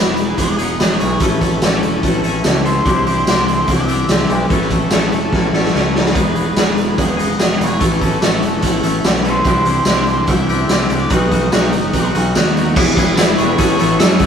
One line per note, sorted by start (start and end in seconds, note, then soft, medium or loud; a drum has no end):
0.00 0.33 E1 medium
0.00 0.37 E3 medium
0.00 0.37 G#3 medium
0.00 0.38 B3 medium
0.00 0.59 D#4 medium
0.00 0.57 G#4 medium
0.00 0.39 B4 medium
0.17 closed hi-hat medium
0.38 0.76 E1 medium
0.38 0.79 E3 medium
0.38 0.59 G#3 medium
0.38 0.58 B3 medium
0.38 0.96 D#5 loud
0.38 kick medium
0.38 closed hi-hat medium
0.58 0.78 G#3 medium
0.58 0.78 B3 medium
0.58 0.80 D#4 medium
0.58 0.81 G#4 medium
0.58 closed hi-hat medium
0.79 0.99 E1 medium
0.79 1.20 E3 medium
0.79 1.00 G#3 medium
0.79 0.98 B3 medium
0.79 1.00 D#4 medium
0.79 0.99 G#4 medium
0.79 snare loud
0.79 closed hi-hat medium
0.79 tambourine loud
0.91 snare soft
0.98 1.20 G#3 medium
0.98 1.19 B3 medium
0.98 1.20 D#4 medium
0.98 1.21 E4 medium
0.98 1.19 G#4 medium
0.98 1.20 C#5 medium
0.98 closed hi-hat medium
1.02 1.20 B1 medium
1.20 1.59 A1 medium
1.20 1.62 A2 medium
1.20 1.63 E3 medium
1.20 1.41 A3 loud
1.20 1.40 C#4 medium
1.20 1.40 E4 loud
1.20 1.40 B4 medium
1.20 kick loud
1.20 closed hi-hat medium
1.24 1.40 A4 medium
1.40 1.63 A3 medium
1.40 1.63 C#4 medium
1.40 1.65 E4 medium
1.40 2.19 A4 medium
1.40 1.65 A4 medium
1.40 kick medium
1.40 closed hi-hat medium
1.62 1.81 A1 medium
1.62 2.03 E3 medium
1.62 2.03 A3 medium
1.62 2.04 C#4 medium
1.62 2.04 E4 medium
1.62 snare loud
1.62 closed hi-hat medium
1.62 tambourine loud
1.66 2.23 A4 loud
1.83 2.02 E1 medium
1.83 closed hi-hat medium
2.03 2.22 A1 medium
2.03 2.45 A2 medium
2.03 2.45 E3 medium
2.03 2.25 A3 medium
2.03 2.24 C#4 medium
2.03 2.23 E4 medium
2.03 kick medium
2.03 closed hi-hat medium
2.24 2.43 A1 medium
2.24 2.44 A3 medium
2.24 2.45 C#4 medium
2.24 2.46 E4 medium
2.24 2.45 A4 medium
2.24 closed hi-hat medium
2.44 2.82 C#2 medium
2.44 2.87 E3 medium
2.44 2.67 A3 medium
2.44 2.67 C#4 medium
2.44 2.66 E4 medium
2.44 2.64 A4 medium
2.44 snare loud
2.44 closed hi-hat medium
2.44 tambourine loud
2.65 2.86 A3 medium
2.65 2.86 C#4 medium
2.65 2.89 E4 medium
2.65 2.84 A4 medium
2.65 3.71 C5 medium
2.65 closed hi-hat medium
2.85 3.23 C2 medium
2.85 3.28 C3 medium
2.85 3.28 E3 medium
2.85 3.10 G3 medium
2.85 3.09 C4 medium
2.85 3.07 D4 medium
2.85 3.05 G4 loud
2.85 kick loud
2.85 closed hi-hat medium
2.90 3.08 E4 loud
3.07 3.29 C4 medium
3.07 3.28 D4 medium
3.07 3.30 E4 medium
3.07 3.29 G4 medium
3.07 closed hi-hat medium
3.11 3.28 G3 medium
3.27 3.65 C2 medium
3.27 3.70 E3 medium
3.27 3.69 G3 medium
3.27 3.70 C4 medium
3.27 3.88 D4 loud
3.27 3.71 E4 medium
3.27 3.88 G4 medium
3.27 snare loud
3.27 closed hi-hat medium
3.27 tambourine loud
3.48 closed hi-hat medium
3.68 4.06 C2 medium
3.68 4.10 C3 medium
3.68 4.09 E3 medium
3.68 3.92 G3 medium
3.68 3.91 C4 medium
3.68 4.30 E5 loud
3.68 kick medium
3.68 closed hi-hat medium
3.72 3.90 E4 loud
3.88 4.09 C4 medium
3.88 4.11 D4 medium
3.88 4.11 E4 medium
3.88 4.11 G4 medium
3.88 closed hi-hat medium
3.93 4.08 G3 medium
4.08 4.28 C2 medium
4.08 4.50 E3 medium
4.08 4.31 G3 medium
4.08 4.31 C4 medium
4.08 4.31 E4 medium
4.08 snare loud
4.08 closed hi-hat medium
4.08 tambourine loud
4.12 4.31 D4 medium
4.12 4.29 G4 medium
4.29 4.48 B1 medium
4.29 4.51 G3 medium
4.29 4.50 C4 medium
4.29 4.50 D4 medium
4.29 4.51 E4 medium
4.29 4.49 G4 medium
4.29 4.52 D5 medium
4.29 closed hi-hat medium
4.50 4.88 A1 medium
4.50 4.91 A2 medium
4.50 4.91 E3 medium
4.50 4.71 A3 medium
4.50 4.70 C#4 medium
4.50 4.70 E4 loud
4.50 4.71 A4 medium
4.50 4.72 B4 medium
4.50 kick loud
4.50 closed hi-hat medium
4.62 snare soft
4.70 4.91 A3 medium
4.70 4.92 C#4 medium
4.70 4.93 E4 medium
4.70 4.92 A4 medium
4.70 kick medium
4.70 closed hi-hat medium
4.76 5.52 A4 medium
4.90 5.10 A1 medium
4.90 5.34 E3 medium
4.90 5.33 A3 medium
4.90 5.33 C#4 medium
4.90 5.35 E4 medium
4.90 5.53 A4 loud
4.90 snare loud
4.90 closed hi-hat medium
4.90 tambourine loud
5.12 5.31 E1 medium
5.12 closed hi-hat medium
5.33 5.52 A1 medium
5.33 5.74 A2 medium
5.33 5.73 E3 medium
5.33 5.54 A3 medium
5.33 5.53 C#4 medium
5.33 5.52 E4 loud
5.33 kick medium
5.33 snare soft
5.53 5.72 A1 medium
5.53 5.73 A3 medium
5.53 5.73 C#4 medium
5.53 5.75 E4 medium
5.53 5.75 A4 medium
5.53 snare medium
5.65 snare medium
5.73 6.12 C#2 medium
5.73 7.80 E3 medium
5.73 5.93 A3 medium
5.73 5.93 C#4 medium
5.73 5.93 E4 medium
5.73 5.95 A4 medium
5.73 snare medium
5.93 6.14 A3 medium
5.93 6.14 C#4 medium
5.93 7.61 E4 medium
5.93 6.15 A4 medium
5.93 6.95 B4 medium
5.93 snare medium
5.99 6.15 A3 medium
6.06 snare medium
6.14 6.53 E1 medium
6.14 6.55 D#3 medium
6.14 6.34 G#3 medium
6.14 6.33 B3 medium
6.14 6.35 D#4 medium
6.14 6.34 G#4 medium
6.14 kick loud
6.14 closed hi-hat medium
6.34 6.55 G#3 medium
6.34 6.56 B3 medium
6.34 6.57 D#4 medium
6.34 6.58 G#4 medium
6.34 closed hi-hat medium
6.56 6.95 E1 medium
6.56 7.36 D#3 medium
6.56 6.96 G#3 medium
6.56 6.97 B3 medium
6.56 7.17 D#4 loud
6.56 7.16 G#4 loud
6.56 snare loud
6.56 closed hi-hat medium
6.56 tambourine loud
6.78 closed hi-hat medium
6.97 7.36 E1 medium
6.97 7.19 G#3 medium
6.97 7.18 B3 medium
6.97 kick medium
6.97 closed hi-hat medium
7.02 7.63 D#5 loud
7.17 7.39 G#3 medium
7.17 7.40 B3 medium
7.17 7.38 D#4 medium
7.17 7.39 G#4 medium
7.17 closed hi-hat medium
7.37 7.58 E1 medium
7.37 7.78 D#3 medium
7.37 7.62 G#3 medium
7.37 7.61 B3 medium
7.37 7.58 D#4 medium
7.37 7.56 G#4 medium
7.37 snare loud
7.37 closed hi-hat medium
7.37 tambourine medium
7.58 7.79 E1 medium
7.58 7.79 D#4 medium
7.58 7.81 E4 medium
7.58 7.78 G#4 medium
7.58 closed hi-hat medium
7.62 7.80 G#3 medium
7.62 7.81 B3 medium
7.62 7.83 C#5 medium
7.79 8.19 A1 medium
7.79 8.21 A2 medium
7.79 8.23 E3 medium
7.79 8.01 A3 medium
7.79 8.01 C#4 loud
7.79 8.00 E4 medium
7.79 8.00 A4 medium
7.79 kick loud
7.79 closed hi-hat medium
7.86 7.91 B4 medium
8.00 8.23 A3 medium
8.00 8.23 C#4 medium
8.00 8.25 E4 medium
8.00 8.23 A4 medium
8.00 kick medium
8.00 closed hi-hat medium
8.05 8.82 A4 medium
8.22 8.41 A1 medium
8.22 8.63 E3 medium
8.22 8.64 A3 medium
8.22 8.64 C#4 medium
8.22 8.64 E4 medium
8.22 8.83 A4 medium
8.22 snare loud
8.22 closed hi-hat medium
8.22 tambourine loud
8.42 8.62 E1 medium
8.42 closed hi-hat medium
8.62 8.82 A1 medium
8.62 9.05 A2 medium
8.62 9.04 E3 medium
8.62 8.86 A3 medium
8.62 8.84 C#4 medium
8.62 8.83 E4 medium
8.62 kick medium
8.62 closed hi-hat medium
8.83 9.03 A1 medium
8.83 9.04 A3 medium
8.83 9.06 C#4 medium
8.83 9.05 E4 medium
8.83 9.06 A4 medium
8.83 closed hi-hat medium
9.04 9.42 B1 medium
9.04 9.45 E3 medium
9.04 9.26 A3 medium
9.04 9.25 C#4 medium
9.04 9.24 E4 medium
9.04 9.25 A4 medium
9.04 snare loud
9.04 closed hi-hat medium
9.04 tambourine loud
9.16 snare soft
9.25 9.46 A3 medium
9.25 9.45 C#4 medium
9.25 9.45 E4 medium
9.25 9.45 A4 medium
9.25 10.24 C5 medium
9.25 closed hi-hat medium
9.44 9.84 C2 medium
9.44 9.87 C3 medium
9.44 9.85 E3 medium
9.44 9.68 G3 loud
9.44 9.67 C4 medium
9.44 9.67 D4 medium
9.44 9.65 E4 loud
9.44 kick loud
9.44 closed hi-hat medium
9.48 9.64 G4 medium
9.65 9.89 G3 medium
9.65 9.88 C4 medium
9.65 9.88 D4 medium
9.65 9.90 E4 medium
9.65 9.88 G4 medium
9.65 closed hi-hat medium
9.85 10.24 C2 medium
9.85 10.27 C3 medium
9.85 10.68 E3 medium
9.85 snare loud
9.85 closed hi-hat medium
9.85 tambourine loud
9.89 10.28 G3 medium
9.89 10.29 C4 medium
9.89 10.51 D4 loud
9.89 10.29 E4 medium
9.89 10.49 G4 medium
10.07 closed hi-hat soft
10.27 10.66 C2 medium
10.27 10.69 C3 medium
10.27 10.51 G3 medium
10.27 10.50 C4 loud
10.27 10.49 E4 loud
10.27 10.87 E5 loud
10.27 kick medium
10.27 closed hi-hat medium
10.49 10.69 G3 medium
10.49 10.70 C4 medium
10.49 10.69 D4 medium
10.49 10.71 E4 medium
10.49 10.70 G4 medium
10.49 closed hi-hat medium
10.69 10.88 C2 medium
10.69 11.10 C3 medium
10.69 11.09 E3 medium
10.69 10.92 G3 medium
10.69 10.91 C4 medium
10.69 10.90 D4 medium
10.69 10.90 E4 medium
10.69 10.89 G4 medium
10.69 snare loud
10.69 closed hi-hat medium
10.69 tambourine loud
10.80 snare soft
10.88 11.09 C2 medium
10.88 11.10 D4 medium
10.88 11.10 E4 medium
10.88 11.10 G4 medium
10.88 11.11 D5 medium
10.88 closed hi-hat medium
10.92 11.11 G3 medium
10.92 11.11 C4 medium
11.10 11.49 B1 medium
11.10 11.51 B2 medium
11.10 11.33 F#3 medium
11.10 11.32 B3 medium
11.10 11.31 D#4 medium
11.10 11.29 F#4 medium
11.10 11.30 D#5 medium
11.10 kick loud
11.10 closed hi-hat medium
11.30 11.53 B3 medium
11.30 11.54 D#4 medium
11.30 11.52 F#4 medium
11.30 12.10 D#5 medium
11.30 kick medium
11.30 closed hi-hat medium
11.34 11.52 F#3 medium
11.52 11.71 B1 medium
11.52 11.91 B2 medium
11.52 11.92 F#3 medium
11.52 11.92 B3 medium
11.52 11.93 D#4 medium
11.52 12.12 F#4 loud
11.52 snare loud
11.52 closed hi-hat medium
11.52 tambourine loud
11.73 11.92 F#1 medium
11.73 closed hi-hat medium
11.92 12.13 B1 medium
11.92 12.33 B2 medium
11.92 12.15 F#3 medium
11.92 12.14 B3 medium
11.92 12.14 D#4 medium
11.92 kick medium
11.92 closed hi-hat medium
12.13 12.34 B1 medium
12.13 12.34 F#3 medium
12.13 12.35 B3 medium
12.13 12.35 D#4 medium
12.13 12.36 F#4 medium
12.13 closed hi-hat medium
12.34 12.73 D#2 medium
12.34 12.74 B2 medium
12.34 12.57 F#3 medium
12.34 12.56 B3 medium
12.34 12.54 D#4 medium
12.34 12.54 F#4 medium
12.34 snare loud
12.34 closed hi-hat medium
12.34 tambourine medium
12.47 snare soft
12.55 12.76 F#3 medium
12.55 12.75 B3 medium
12.55 12.75 D#4 medium
12.55 12.75 F#4 medium
12.55 closed hi-hat medium
12.76 12.92 E1 medium
12.76 12.95 E3 loud
12.76 12.96 G#3 medium
12.76 12.97 B3 loud
12.76 12.97 E4 loud
12.76 12.98 G#4 loud
12.76 13.59 G#4 medium
12.76 13.59 B4 medium
12.76 13.59 E5 medium
12.76 14.26 B5 medium
12.76 kick loud
12.76 crash loud
12.97 13.13 E1 medium
12.97 13.17 E3 medium
12.97 13.18 G#3 medium
12.97 13.19 B3 medium
12.97 13.19 E4 medium
12.97 13.18 G#4 medium
12.97 kick medium
12.97 closed hi-hat medium
13.17 13.34 E1 loud
13.17 13.38 E3 medium
13.17 13.39 G#3 loud
13.17 13.40 B3 loud
13.17 13.39 E4 loud
13.17 13.38 G#4 loud
13.17 snare loud
13.17 closed hi-hat loud
13.17 tambourine loud
13.38 13.55 E1 medium
13.38 13.58 E3 medium
13.38 13.59 G#3 medium
13.38 13.60 B3 loud
13.38 13.59 E4 loud
13.38 13.58 G#4 medium
13.38 13.96 C#5 medium
13.38 13.95 C#6 medium
13.38 closed hi-hat medium
13.58 13.74 A1 medium
13.58 13.77 A2 medium
13.58 13.78 E3 medium
13.58 13.78 A3 loud
13.58 13.79 B3 loud
13.58 13.78 C#4 loud
13.58 13.79 E4 loud
13.58 13.80 A4 loud
13.58 14.26 A4 medium
13.58 14.26 E5 medium
13.58 kick medium
13.58 closed hi-hat medium
13.63 14.26 C#5 medium
13.78 13.96 A1 medium
13.78 14.00 A2 medium
13.78 14.01 E3 medium
13.78 14.01 A3 medium
13.78 13.98 B3 loud
13.78 14.02 C#4 medium
13.78 14.01 E4 loud
13.78 13.98 A4 medium
13.78 closed hi-hat medium
13.98 14.21 A2 loud
13.98 14.18 E3 medium
13.98 14.20 B3 loud
13.98 14.20 A4 loud
13.98 14.26 E5 medium
13.98 14.26 E6 medium
13.98 snare loud
13.98 closed hi-hat loud
13.98 tambourine loud
14.02 14.26 F#2 medium
14.02 14.21 E3 loud
14.02 14.22 A3 loud
14.02 14.22 C#4 loud
14.02 14.22 E4 loud
14.19 14.26 A2 medium
14.19 14.26 E3 medium
14.19 14.26 A3 medium
14.19 14.26 B3 medium
14.19 14.26 C#4 medium
14.19 14.26 A4 medium
14.19 kick medium
14.19 closed hi-hat medium